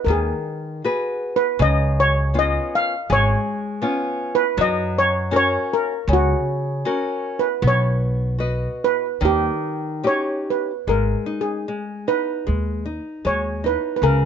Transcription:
0.05 D#2 D#3 A#4
0.10 G#4
0.84 F#4 G#4 B4
1.36 B4
1.59 C#2 C#3 D#5
2.00 C#5
2.34 B3 C#4 F4
2.39 D#5
2.75 F5
3.10 G#1 G#3 C#5
3.82 B3 C#4 F4
4.35 B4
4.57 F#2 F#3 D#5
4.98 C#5
5.31 C#4 F#4 A#4
5.36 C#5
5.73 A#4
6.08 C#2 C#3
6.13 F#4
6.85 C#4 F#4 A#4
7.39 B4
7.62 B1 B3
7.67 C#5
8.39 F#4 B4 D#5
8.84 B4
9.21 D#2 D#3
9.25 G4
10.04 C#4 D#4 G4 C#5
10.50 B4
10.87 G#1 G#3 A#4
11.26 D#4
11.41 G#4
11.68 G#3
12.08 D#4 B4
12.47 D#2 G#3
12.86 D#4
13.25 D#2 G#3 C#5
13.64 D#4 B4
13.96 B4
14.02 C#2 C#3 A#4

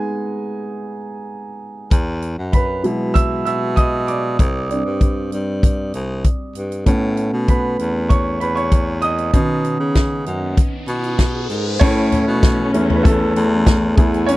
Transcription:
Already playing: G#3 B3 D#4 G#4 G#5
1.91 E2, kick, closed hi-hat
2.22 closed hi-hat
2.39 F#2
2.52 B4 B5, kick, closed hi-hat
2.84 B2 F#3 G#3 E4, closed hi-hat
3.14 E5 E6, kick, closed hi-hat
3.45 B2 E5 E6, closed hi-hat
3.76 D#5 D#6, kick, closed hi-hat
4.07 D5 D6, closed hi-hat
4.39 C2, kick, closed hi-hat
4.70 G3 C4 D4, closed hi-hat
4.85 G2
5.01 kick, closed hi-hat
5.32 G2, closed hi-hat
5.63 kick, closed hi-hat
5.94 C2, closed hi-hat
6.24 kick, closed hi-hat
6.55 G2, closed hi-hat
6.72 closed hi-hat
6.86 A2 A3 B3 C#4, kick, closed hi-hat
7.17 closed hi-hat
7.33 B2
7.48 B4 B5, kick, closed hi-hat
7.79 E2, closed hi-hat
8.09 C#5 C#6, kick, closed hi-hat
8.40 E2 B4 B5, closed hi-hat
8.55 C#5 C#6, closed hi-hat
8.72 kick, closed hi-hat
9.02 D#5 D#6, closed hi-hat
9.18 closed hi-hat
9.33 B2 D#3 B3 C#4, kick, closed hi-hat, riser
9.64 closed hi-hat
9.80 C#3
9.95 kick, snare, closed hi-hat
10.26 F#2, closed hi-hat
10.57 kick, closed hi-hat
10.88 B2, closed hi-hat
11.04 closed hi-hat
11.19 kick, snare, closed hi-hat
11.49 G#2, snare, closed hi-hat
11.79 A2 E3 A3 C#4 E4 C#5, kick, crash
12.12 closed hi-hat, floor tom
12.27 B2
12.43 kick, snare, closed hi-hat
12.74 E2 A3 C#4 E4, closed hi-hat
12.90 floor tom
12.96 B4
13.03 A3 A4, kick, closed hi-hat
13.36 E2, closed hi-hat
13.67 kick, snare, closed hi-hat
13.96 E2 E3 B3 E4 G#4 G#5, kick, closed hi-hat
14.14 closed hi-hat
14.26 C#4 C#5, closed hi-hat

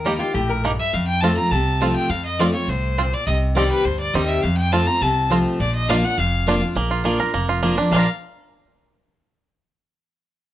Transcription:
Already playing: D#2 D#3 A#4
0.05 G3 A#3 D#4 G4
0.19 D#4 F4 G4
0.34 A#1 A2 G4
0.49 A#4
0.64 G2 A#3 D#4 G4
0.79 E5
0.93 F2 F5
1.07 G5
1.21 F3 A3 C4 F4 A5
1.36 C4 F4 A#5
1.51 C2 C3 A5
1.81 F3 A3 C4 F4
1.95 G5
2.09 F2 F5
2.25 D#5
2.39 F3 A3 C4 F4 D5
2.53 C4 F4 C#5
2.68 C2 A2 C5
2.98 A#2 C4 F4
3.13 D5
3.26 C2 C3 D#5
3.55 D#3 G3 C4 D#4 G4 D5
3.71 B4
3.84 D2 G2 C5
3.99 D5
4.13 D#2 D#3 G3 C4 D#4 G4 D#5
4.27 E5
4.42 F2 F5
4.57 G5
4.72 F3 A3 C4 F4 A5
4.87 C4 F4 A#5
5.01 C2 C3 A5
5.30 F3 A3 C4 F4
5.59 A#1 A#2 D5
5.75 D#5
5.88 F3 A#3 D4 F4 F5
6.03 D4 F4 F#5
6.17 F1 F2 F5
6.46 F3 A#3 D4 F4
6.62 D4 F4
6.75 A#1 A#2 A#3
6.91 F4
7.04 F3 A#3 D4 F4
7.20 F4 A#4
7.33 F1 F2 A#3
7.49 F4
7.63 F3 A#3 D4 F4
7.77 D4 F4
7.91 A#1 A#2 F3 A#3 D4 F4 F5
7.96 F4 A#4

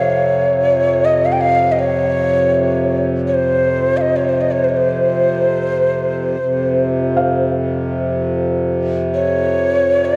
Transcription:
Already playing: F2 C3 C#5
1.05 D#5
1.25 F5
1.32 G5
1.41 F5
1.72 D#5
1.79 C#5
3.28 C#5
3.34 C5
3.97 D#5 F5
4.16 C#5
4.29 C5
4.41 D#5
4.51 C#5
4.64 C5
4.69 C#5
4.76 C5
6.38 F2 C3
7.17 F5
9.14 C#5
10.05 D#5

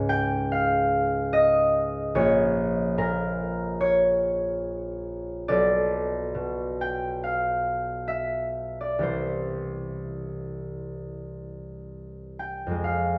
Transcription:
Already playing: C#2 G#2 C#5 F5
0.09 G5
0.52 F5
1.33 D#5
2.15 A#1 C#5
2.98 A#2 A#4
3.81 C#5
5.48 B1 D5
6.35 B2
6.81 G5
7.24 F5
8.08 E5
8.81 D5
8.99 C2 E3 G3 G4
9.03 C5
12.39 G5
12.67 F2
12.71 G#3
12.75 F4
12.84 F5

